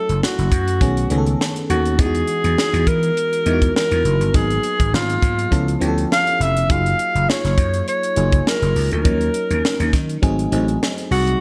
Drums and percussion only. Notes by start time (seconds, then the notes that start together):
0.09 closed hi-hat
0.23 snare
0.39 closed hi-hat
0.52 kick, closed hi-hat
0.68 closed hi-hat
0.81 kick, closed hi-hat
0.97 closed hi-hat
1.10 closed hi-hat
1.26 closed hi-hat
1.41 snare
1.56 closed hi-hat
1.70 closed hi-hat
1.86 closed hi-hat
1.99 kick, closed hi-hat
2.15 closed hi-hat
2.28 closed hi-hat
2.44 closed hi-hat
2.58 snare
2.74 closed hi-hat
2.87 kick, closed hi-hat
3.03 closed hi-hat
3.17 closed hi-hat
3.33 closed hi-hat
3.46 closed hi-hat
3.62 kick, closed hi-hat
3.76 snare
3.91 closed hi-hat
4.05 closed hi-hat
4.21 closed hi-hat
4.34 kick, closed hi-hat
4.50 closed hi-hat
4.63 closed hi-hat
4.80 kick, closed hi-hat
4.94 snare
5.10 closed hi-hat
5.22 kick, closed hi-hat
5.39 closed hi-hat
5.52 kick, closed hi-hat
5.68 closed hi-hat
5.81 closed hi-hat
5.98 closed hi-hat
6.12 snare
6.27 closed hi-hat
6.41 closed hi-hat
6.57 closed hi-hat
6.70 kick, closed hi-hat
6.86 closed hi-hat
6.99 closed hi-hat
7.16 closed hi-hat
7.30 snare
7.45 snare, closed hi-hat
7.58 kick, closed hi-hat
7.74 closed hi-hat
7.88 closed hi-hat
8.03 closed hi-hat
8.16 closed hi-hat
8.32 kick, closed hi-hat
8.47 snare
8.62 closed hi-hat
8.76 open hi-hat
8.91 closed hi-hat
9.05 kick, closed hi-hat
9.21 closed hi-hat
9.34 closed hi-hat
9.51 closed hi-hat
9.65 snare
9.80 closed hi-hat
9.93 kick, snare, closed hi-hat
10.09 closed hi-hat
10.23 kick, closed hi-hat
10.39 closed hi-hat
10.52 closed hi-hat
10.68 closed hi-hat
10.83 snare
10.98 closed hi-hat
11.12 open hi-hat
11.27 closed hi-hat